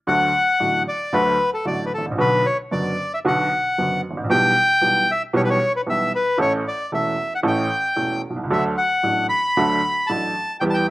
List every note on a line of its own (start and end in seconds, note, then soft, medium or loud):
0.07 0.29 D2 medium
0.07 0.29 D3 medium
0.07 0.29 F#3 medium
0.07 0.29 A3 medium
0.07 0.30 F#4 medium
0.07 0.83 F#5 medium
0.60 0.82 A1 soft
0.60 0.82 A2 soft
0.60 0.82 D3 soft
0.60 0.82 F#3 soft
0.60 0.82 A3 soft
0.60 0.82 F#4 soft
0.88 1.15 D5 medium
1.13 1.35 D2 medium
1.13 1.35 D3 medium
1.13 1.35 F#3 medium
1.13 1.35 A3 medium
1.13 1.36 F#4 medium
1.13 1.50 B4 medium
1.54 1.66 A4 medium
1.65 1.88 A1 soft
1.65 1.88 A2 soft
1.65 1.88 D3 soft
1.65 1.88 F#3 soft
1.65 1.88 A3 soft
1.65 1.88 F#4 soft
1.65 1.85 D5 medium
1.86 1.92 B4 medium
1.94 2.06 A4 medium
1.98 2.05 G#1 soft
2.06 2.12 A1 soft
2.11 2.18 A#1 medium
2.18 2.41 B1 medium
2.18 2.41 B2 medium
2.18 2.40 D3 medium
2.18 2.40 F#3 medium
2.18 2.41 B3 medium
2.18 2.41 F#4 medium
2.18 2.46 B4 medium
2.46 2.57 C#5 medium
2.71 2.94 F#1 soft
2.71 2.94 F#2 soft
2.71 2.93 D3 soft
2.71 2.94 F#3 soft
2.71 2.94 B3 soft
2.71 2.93 F#4 soft
2.71 3.13 D5 medium
3.14 3.19 E5 medium
3.25 3.47 B1 medium
3.25 3.47 B2 medium
3.25 3.47 D3 medium
3.25 3.47 F#3 medium
3.25 3.47 B3 medium
3.25 3.47 F#4 medium
3.25 4.01 F#5 medium
3.78 4.00 F#1 soft
3.78 4.00 F#2 medium
3.78 4.00 D3 soft
3.78 4.00 F#3 soft
3.78 4.00 B3 soft
3.78 4.00 F#4 soft
4.11 4.17 G#1 soft
4.17 4.24 A1 medium
4.24 4.30 A#1 medium
4.30 4.52 B1 medium
4.30 4.52 B2 medium
4.30 4.52 E3 medium
4.30 4.52 G3 medium
4.30 4.52 B3 medium
4.30 4.52 G4 medium
4.30 5.11 G5 loud
4.81 5.04 B1 medium
4.81 5.04 B2 soft
4.81 5.04 E3 soft
4.81 5.04 G3 soft
4.81 5.04 B3 soft
4.81 5.04 G4 soft
5.11 5.22 E5 medium
5.33 5.56 B1 medium
5.33 5.56 B2 medium
5.33 5.56 E3 medium
5.33 5.56 G3 medium
5.33 5.56 B3 medium
5.33 5.56 G4 medium
5.33 5.42 C#5 medium
5.44 5.50 B4 medium
5.50 5.73 C#5 medium
5.76 5.81 B4 medium
5.86 6.08 B1 medium
5.86 6.08 B2 soft
5.86 6.08 E3 soft
5.86 6.09 G3 soft
5.86 6.09 B3 soft
5.86 6.08 G4 soft
5.86 6.12 E5 medium
6.15 6.38 B4 medium
6.37 6.61 A1 medium
6.37 6.61 A2 medium
6.37 6.60 E3 medium
6.37 6.60 A3 medium
6.37 6.61 C#4 medium
6.37 6.61 A4 medium
6.42 6.53 C#5 medium
6.68 6.91 D5 medium
6.92 7.14 E1 soft
6.92 7.14 E2 soft
6.92 7.14 E3 soft
6.92 7.14 A3 soft
6.92 7.14 C#4 soft
6.92 7.14 A4 soft
6.92 7.34 E5 medium
7.35 7.40 F#5 medium
7.43 7.66 A1 medium
7.43 7.66 A2 medium
7.43 7.66 E3 medium
7.43 7.66 A3 medium
7.43 7.66 C#4 medium
7.43 7.66 A4 medium
7.47 8.21 G5 medium
7.96 8.19 E1 soft
7.96 8.19 E2 soft
7.96 8.19 E3 soft
7.96 8.19 A3 soft
7.96 8.19 C#4 soft
7.96 8.19 A4 soft
8.30 8.37 B1 soft
8.36 8.43 C2 medium
8.44 8.50 C#2 medium
8.50 8.73 D2 medium
8.50 8.73 D3 medium
8.50 8.73 F#3 medium
8.50 8.73 A3 medium
8.50 8.73 D4 medium
8.50 8.73 A4 medium
8.50 8.64 E5 medium
8.78 9.27 F#5 medium
9.03 9.26 A1 medium
9.03 9.26 A2 soft
9.03 9.26 F#3 soft
9.03 9.26 A3 soft
9.03 9.26 D4 soft
9.03 9.26 A4 soft
9.29 10.11 B5 medium
9.57 9.79 D2 medium
9.57 9.79 D3 medium
9.57 9.79 F#3 medium
9.57 9.79 A3 medium
9.57 9.79 D4 medium
9.57 9.79 A4 medium
10.07 10.31 A1 medium
10.07 10.31 A2 soft
10.07 10.31 F#3 soft
10.07 10.31 A3 soft
10.07 10.32 D4 soft
10.07 10.32 A4 soft
10.07 10.57 A5 medium
10.60 10.84 E2 medium
10.60 10.84 E3 medium
10.60 10.83 G3 medium
10.60 10.84 B3 medium
10.60 10.84 G4 medium
10.60 10.64 G5 medium
10.70 10.76 A5 medium
10.74 10.87 G5 medium